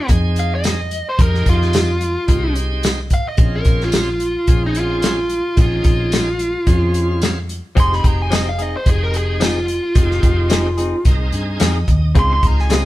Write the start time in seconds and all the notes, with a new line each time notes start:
0.08 F2 G#3 C4 D#4 G#4, kick, closed hi-hat
0.36 F5, closed hi-hat
0.55 D#5
0.64 snare, closed hi-hat, tambourine
0.91 closed hi-hat
1.09 C5
1.18 F2 G#3 C4 D#4 G4 A#4, kick, closed hi-hat
1.35 snare
1.46 F2 F4, kick, closed hi-hat
1.62 snare
1.73 snare, closed hi-hat, tambourine
2.01 closed hi-hat
2.27 C2 G#3 C4 D#4 G4, kick, closed hi-hat
2.56 closed hi-hat
2.83 snare, closed hi-hat, tambourine
3.10 F5, kick, closed hi-hat
3.28 D#5
3.37 A#1 G#3 C4 C#4 F4, kick, closed hi-hat
3.56 A#4
3.65 A#1, kick, closed hi-hat
3.81 F4, snare
3.92 snare, closed hi-hat, tambourine
4.20 closed hi-hat
4.47 A#1 G#3 C4 C#4 G#4, kick, closed hi-hat
4.66 D#4
4.75 closed hi-hat
4.80 F4
5.02 snare, closed hi-hat, tambourine
5.29 closed hi-hat
5.56 A#1 G#3 C4 C#4 D#4, kick, closed hi-hat
5.61 F4
5.84 A#1, kick, closed hi-hat
6.12 snare, closed hi-hat, tambourine
6.39 closed hi-hat
6.66 F2 G#3 C4 C#4 F4, kick, closed hi-hat
6.94 closed hi-hat
7.22 snare, closed hi-hat, tambourine
7.49 closed hi-hat
7.75 F1 F3 G#3 C4 D#4 G4 G#4, kick, closed hi-hat
7.80 C6
7.93 B5, snare
8.04 F1 A#5, kick, closed hi-hat
8.22 G#5
8.31 F3 C4 D#4 G#4, snare, closed hi-hat, tambourine
8.35 D#5
8.49 F5
8.59 C4 D#4 G#4 D#5, closed hi-hat
8.77 C5
8.86 F1 G#3 C4 D#4 G4 G#4, kick, closed hi-hat
9.03 A#4
9.14 G#4, closed hi-hat
9.40 F3 C4 D#4 G#4, snare, closed hi-hat, tambourine
9.44 F4
9.68 closed hi-hat
9.94 F1 G#3 C4 D#4 G4, kick, closed hi-hat
10.11 snare
10.23 F1, kick, closed hi-hat
10.50 F3 C4 D#4 G#4, snare, closed hi-hat, tambourine
10.77 C4 D#4 G#4, closed hi-hat
11.05 C2 G#3 C4 D#4 A#4, kick, closed hi-hat
11.32 G2 G#5, closed hi-hat
11.60 F2 F3 C4 D#4 G#4 D#5, snare, closed hi-hat, tambourine
11.88 D#2, kick, closed hi-hat
12.15 C#2 C#3 G#3 C4 D#4 F4 G#4, kick, closed hi-hat
12.19 C6
12.33 C6
12.43 C#2 A#5, kick, closed hi-hat
12.59 G#5, snare
12.70 C#3 C4 F4 G#4, snare, closed hi-hat, tambourine
12.75 D#5